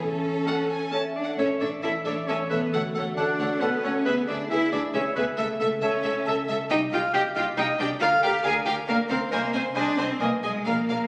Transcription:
Already playing: E4
0.00 A1 A2 C#4 A4
0.24 C#4
0.47 C#4 A4 F#5
0.70 C#5 G#5
0.92 C#4 A4 C#5 E5 A5
1.15 D4 A4 D5
1.23 F#5
1.38 A1 A2 C#4 A4 C#5 E5
1.60 A1 E3 D4 A4 C#5 D5 E5
1.82 A1 C#4 E4 A4 C#5 E5 A5
2.04 A1 D4 E4 A4 C#5 D5 E5
2.27 A1 C#4 A4 C#5 E5 A5
2.50 A1 E3 B3 A4 B4 C#5 E5
2.73 D2 D3 A3 F#4 A4 C#5 F#5
2.94 D2 A3 A4 C#5 F#5
3.16 D2 C#4 D4 A4 C#5 D5 F#5 A5
3.39 D2 F#4 A4 C#5 F#5
3.61 D2 B3 C#4 A4 B4 C#5 F#5 A5
3.83 D2 A3 C#4 A4 C#5 F#5
4.05 D2 D3 B3 G#4 B4 E5
4.28 D2 G#3 D4 G#4 B4 D5 E5
4.50 D2 B3 E4 G#4 B4 E5 G#5
4.72 D2 D4 E4 G#4 B4 D5 E5
4.94 D2 B3 C#4 G#4 B4 C#5 E5 G#5
5.16 D2 G#3 B3 G#4 B4 E5
5.38 C#2 C#3 A3 A4 E5
5.59 C#2 A3 C#4 A4 E5
5.82 C#2 A3 C#4 A4 C#5 E5 A5
6.03 C#2 E4 A4 E5
6.26 C#2 A3 A4 E5 A5
6.48 C#2 C#4 A4 E5
6.69 C2 C3 D#4 G4 D#5 G5
6.91 C2 G3 F4 G4 D#5 F5 G5
7.13 C2 C4 G4 D#5 G5
7.35 C2 D#4 F4 G4 D#5 F5 G5
7.57 C2 C4 D#4 G4 D#5 G5
7.79 C2 G3 D4 G4 D5 D#5 G5
8.00 D2 D3 F4 A#4 D5 F5
8.23 D2 A#3 G4 A#4 D5 F5 G5
8.43 D2 D4 G#4 A#4 D5 F5 G#5 A#5
8.66 D2 G4 A#4 D5 F5 G5
8.87 D2 A#3 D4 A#4 D5 F5 A#5
9.08 D2 C4 A#4 C5 D5 F5
9.31 C2 C3 A#3 A#4 C5 D#5 G#5
9.52 C2 C4 C5 D#5 G#5
9.75 C2 G#3 D4 G#4 C5 D5 D#5 G#5
9.98 C2 C4 D#4 C5 D#5 G#5
10.20 B1 B2 A#3 A#4 B4 D#5 G#5
10.43 B1 G#3 D#4 G#4 D#5 G#5
10.66 A#1 A#2 A#3 A#4 D5 F5
10.89 A#1 A#3 A#4 D5 F5

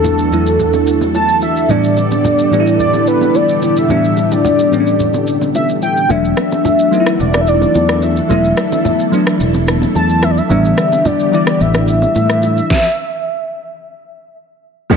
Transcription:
Already playing: E2 E3 F#3 A3 B3 D4 E4 F#4 A4
0.04 high bongo, low conga, shaker
0.19 shaker
0.31 E2 F#3 A3 B3 E4, shaker
0.47 shaker
0.59 low conga, shaker
0.73 low bongo, shaker
0.87 shaker
1.01 low bongo, shaker
1.15 A5, high bongo, shaker
1.29 shaker
1.42 E5, high bongo, shaker
1.56 shaker
1.63 E5
1.69 A2 D3 E3 G3 B3 D4 G4 D5, low conga, shaker
1.84 shaker
1.97 low bongo, shaker
2.12 low bongo, shaker
2.24 high bongo, low conga, shaker
2.39 shaker
2.51 A2 E3 G3 B3 D4, shaker
2.60 E4
2.67 shaker
2.79 D5, low conga, shaker
2.94 low bongo, shaker
3.07 B4, shaker
3.21 low bongo, shaker
3.35 D5, high bongo, shaker
3.49 shaker
3.62 high bongo, shaker
3.77 E5, shaker
3.89 A2 E3 G3 B3 D4, low conga, shaker
4.04 shaker
4.17 low bongo, shaker
4.32 D5, low bongo, shaker
4.45 high bongo, low conga, shaker
4.59 shaker
4.71 A2 E3 G3 B3 C#4, shaker
4.80 D4
4.87 shaker
5.00 low conga, shaker
5.14 low bongo, shaker
5.27 shaker
5.41 low bongo, shaker
5.55 E5, high bongo, shaker
5.69 shaker
5.82 G5, high bongo, shaker
5.97 shaker
6.09 E1 E3 F#3 A3 B3 D4 F#4 A4 E5, low conga, shaker
6.24 shaker
6.37 cross-stick, low bongo, shaker
6.52 low bongo, shaker
6.65 high bongo, low conga, shaker
6.79 shaker
6.91 F#3 A3 B3 D#4, shaker
7.00 E4
7.06 cross-stick, shaker
7.20 E1 D5, low conga, shaker
7.34 cross-stick, low bongo, shaker
7.41 E5
7.47 D5, shaker
7.62 low bongo, shaker
7.75 E2, high bongo, shaker
7.89 cross-stick, shaker
8.02 E5, high bongo, shaker
8.17 shaker
8.29 E1 F#3 A3 B3 E4, low conga, shaker
8.45 shaker
8.57 cross-stick, low bongo, shaker
8.72 low bongo, shaker
8.85 high bongo, low conga, shaker
8.99 shaker
9.12 F#3 A3 B3 D4, shaker
9.27 cross-stick, shaker
9.40 E1, low conga, shaker
9.54 low bongo, shaker
9.68 cross-stick, shaker
9.82 low bongo, shaker
9.95 E2 A5, high bongo, shaker
10.10 shaker
10.23 E5, cross-stick, high bongo, shaker
10.31 D5
10.37 E5, shaker
10.49 A1 D3 E3 G3 B3 D4 G4, low conga, shaker
10.65 shaker
10.77 cross-stick, low bongo, shaker
10.92 low bongo, shaker
11.05 D5, high bongo, low conga, shaker
11.20 shaker
11.32 E3 G3 B3 E4 D5, shaker
11.47 cross-stick, shaker
11.60 A1 E5, low conga, shaker
11.74 cross-stick, low bongo, shaker
11.88 shaker
12.02 low bongo, shaker
12.15 A2, high bongo, shaker
12.30 cross-stick, shaker
12.43 high bongo, shaker
12.57 shaker
12.70 kick, snare
14.90 E2 F#3 A3 B3 D4, kick, downlifter, shaker

